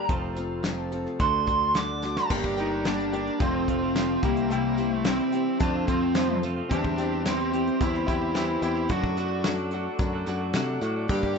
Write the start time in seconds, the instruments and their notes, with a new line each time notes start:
0.09 picked electric bass F1, clean electric guitar F2 C3 F3 A3 C4 F4, tonewheel organ F4 A4 C5 A5, steel-string acoustic guitar A4, kick, closed hi-hat
0.35 steel-string acoustic guitar C4 F4 A4, closed hi-hat, tambourine
0.63 steel-string acoustic guitar F3 C4 F4 A4, snare, closed hi-hat, tambourine
0.92 steel-string acoustic guitar C4 F4 A4, closed hi-hat, tambourine
1.07 snare
1.19 picked electric bass D2, clean electric guitar D3 A3 D4 F#4, tonewheel organ F#4 D5, steel-string acoustic guitar A4, lead electric guitar C6, kick, closed hi-hat, tambourine
1.46 steel-string acoustic guitar D4 F#4 A4, kick, closed hi-hat, tambourine
1.74 steel-string acoustic guitar D3 A3 D4 F#4 A4, lead electric guitar D6, snare, closed hi-hat, tambourine
2.02 steel-string acoustic guitar D4 F#4 A4, snare, tambourine
2.17 snare
2.29 picked electric bass G1, clean electric guitar G2 D3 G3 A#3 D4 G4, tonewheel organ G4 A#4 D5 A#5, lead electric guitar G4, kick, crash
2.44 picked electric bass G1, kick
2.57 clean electric guitar G3 A#3 D4 G4, lead electric guitar D#4, closed hi-hat, tambourine
2.71 clean electric guitar G3 A#3 D4 G4
2.85 clean electric guitar G2 D3 G3 A#3 D4 G4, lead electric guitar D4, snare, closed hi-hat, tambourine
2.99 clean electric guitar G3 A#3 D4 G4, closed hi-hat
3.12 clean electric guitar G3 A#3 D4 G4, lead electric guitar D4, closed hi-hat, tambourine
3.27 closed hi-hat
3.40 picked electric bass F1, clean electric guitar F2 C3 F3 A3 C4 F4, lead electric guitar C4, tonewheel organ A4 C5 F5 C6, steel-string acoustic guitar A4, kick, closed hi-hat, tambourine
3.54 clean electric guitar F3 A3 C4 F4
3.66 picked electric bass F1, clean electric guitar F3 A3 C4 F4, steel-string acoustic guitar A4, kick, closed hi-hat
3.82 clean electric guitar F3 A3 C4 F4
3.96 clean electric guitar F2 C3 F3 A3 C4 F4, steel-string acoustic guitar A4, snare, closed hi-hat, tambourine
4.23 picked electric bass C2, clean electric guitar C3 E3 G3 C4 E4, lead electric guitar A#3, steel-string acoustic guitar G4, tonewheel organ G4 E5, kick, closed hi-hat, tambourine
4.37 clean electric guitar G3 C4 E4, closed hi-hat
4.50 clean electric guitar C3 E3 G3 C4 E4, lead electric guitar A#3, steel-string acoustic guitar G4, closed hi-hat
4.77 clean electric guitar E3 G3 C4 E4, steel-string acoustic guitar G4, closed hi-hat, tambourine
4.91 clean electric guitar G3 C4 E4, lead electric guitar A3
5.05 clean electric guitar C3 E3 G3 C4 E4, lead electric guitar C4, steel-string acoustic guitar G4, snare, closed hi-hat, tambourine
5.19 clean electric guitar G3 C4 E4, closed hi-hat
5.32 clean electric guitar E3 G3 C4 E4, steel-string acoustic guitar G4, closed hi-hat, tambourine
5.60 picked electric bass F2, clean electric guitar F2 C3 F3 A3 C4 F4, lead electric guitar D4, tonewheel organ A4 F5, steel-string acoustic guitar A4, kick, closed hi-hat, tambourine
5.75 clean electric guitar F3 A3 C4 F4
5.87 picked electric bass F2, clean electric guitar F3 A3 C4, lead electric guitar C4, steel-string acoustic guitar A4, kick, closed hi-hat, tambourine
5.91 clean electric guitar F4
6.02 clean electric guitar F3 A3 C4 F4
6.15 clean electric guitar F2 C3 F3 A3 C4 F4, steel-string acoustic guitar A4, snare, closed hi-hat, tambourine
6.42 clean electric guitar F3 A3 C4 F4, steel-string acoustic guitar A4, closed hi-hat, tambourine
6.57 clean electric guitar F3 A3 C4 F4
6.69 picked electric bass E2, clean electric guitar E3 G3 C4 G4, lead electric guitar D4, steel-string acoustic guitar E4, tonewheel organ G4 E5, kick, closed hi-hat
6.84 picked electric bass E2, kick
6.98 clean electric guitar E3 G3 C4 G4, steel-string acoustic guitar E4, closed hi-hat, tambourine
7.12 clean electric guitar G3 C4 G4
7.25 clean electric guitar E3 G3 C4 G4, lead electric guitar C4, steel-string acoustic guitar E4, snare, closed hi-hat, tambourine
7.39 clean electric guitar G3 C4 G4, closed hi-hat
7.53 clean electric guitar E3 G3 C4 G4, steel-string acoustic guitar E4, closed hi-hat, tambourine
7.67 closed hi-hat
7.80 picked electric bass E2, steel-string acoustic guitar G3 C4 E4 G4, lead electric guitar E4, kick, closed hi-hat, tambourine
7.94 clean electric guitar G3 C4 G4, snare
8.08 picked electric bass E2, clean electric guitar E3 G3 C4 G4, lead electric guitar E4, steel-string acoustic guitar E4, kick, closed hi-hat, tambourine
8.21 clean electric guitar G3 C4 G4
8.34 clean electric guitar E3 G3 C4 G4, steel-string acoustic guitar E4, lead electric guitar E4, snare, closed hi-hat, tambourine
8.62 picked electric bass E2, clean electric guitar E3 G3 C4 G4, lead electric guitar E4, steel-string acoustic guitar E4, closed hi-hat, tambourine
8.75 clean electric guitar G3 C4 G4, closed hi-hat
8.89 picked electric bass F#2, clean electric guitar F#3 A3 D4 F#4, lead electric guitar F#4, tonewheel organ A4 D5 F#5 D6, steel-string acoustic guitar A4, kick, closed hi-hat, tambourine
9.04 kick
9.17 clean electric guitar F#3 A3 D4 F#4, steel-string acoustic guitar A4, closed hi-hat, tambourine
9.30 clean electric guitar A3 D4 F#4
9.44 clean electric guitar F#3 A3 D4 F#4, steel-string acoustic guitar A4, snare, closed hi-hat, tambourine
9.58 clean electric guitar A3 D4 F#4, closed hi-hat
9.71 clean electric guitar F#3 A3 D4 F#4, steel-string acoustic guitar A4, closed hi-hat, tambourine
9.99 picked electric bass F#2, steel-string acoustic guitar F#3 D4 F#4 A4, kick, closed hi-hat, tambourine
10.13 clean electric guitar A3 D4 F#4
10.26 picked electric bass F#2, clean electric guitar F#3 A3 D4 F#4, steel-string acoustic guitar A4, closed hi-hat, tambourine
10.41 clean electric guitar A3 D4 F#4
10.53 picked electric bass C3, clean electric guitar F#3 A3 D4 F#4, steel-string acoustic guitar A4, snare, closed hi-hat, tambourine
10.81 picked electric bass A2, clean electric guitar F#3 A3 D4 F#4, steel-string acoustic guitar A4, closed hi-hat, tambourine
10.96 clean electric guitar A3 D4 F#4
11.09 picked electric bass G2, clean electric guitar G2 D3 G3 A#3 D4 G4, lead electric guitar G4, tonewheel organ A#4 G5, kick, crash
11.23 picked electric bass G2, kick